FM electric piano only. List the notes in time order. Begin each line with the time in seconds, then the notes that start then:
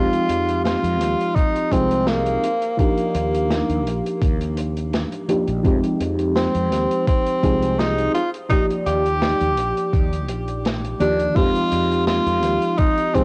Already playing: F3 G#3 C4 D#4 G4
1.71 F3 G#3 C4 D#4 G#4
2.77 F3 A#3 D4 D#4 G4
5.28 F3 A#3 D4 D#4 G4
5.63 F3 G#3 C4 D#4 G4
7.42 F3 G#3 C4 D#4 G#4
8.49 F3 A#3 D#4 G4 D5
11.00 D#3 F3 A#3 D4 G4
11.34 F3 G#3 C4 D#4 G4
13.14 F3 G#3 C4 D#4 G#4